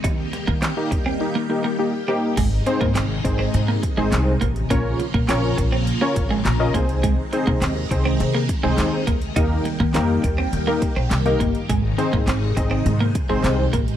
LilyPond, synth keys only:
\new Staff \with { instrumentName = "Synth keys" } { \time 4/4 \key aes \major \tempo 4 = 103 << { r1 | r1 | r2. bes''8 aes''8 | r1 |
r1 | r1 | } \\ { r4 <ees' g'>16 <bes ees' g'>16 r8 <bes ees' g'>16 r16 <bes ees' g'>16 r16 <bes ees' g'>16 r16 <bes ees' g'>8 | r8 <c' ees' aes' c''>8 r8 <c' ees' aes' c''>8 r8. <c' ees' aes' c''>8 r8. | <des' f' bes' des''>8 r8 <des' f' bes' des''>8 r8. <des' f' bes' des''>8 r8 <des' f' bes' ees''>16 <c' ees' aes' c''>8~ | <c' ees' aes' c''>16 r16 <c' ees' aes' c''>8 r8 <c' ees' aes' c''>8 r8. <c' ees' aes' c''>8 r8. |
<bes ees' g' bes'>8 r8 <bes ees' g' bes'>8 r8. <bes ees' g' bes'>8 r8 <bes ees' g' bes'>8 r16 | r8 <c' ees' aes' c''>8 r8 <c' ees' aes' ees''>8 r8. <c' ees' aes' c''>8 r8. | } >> }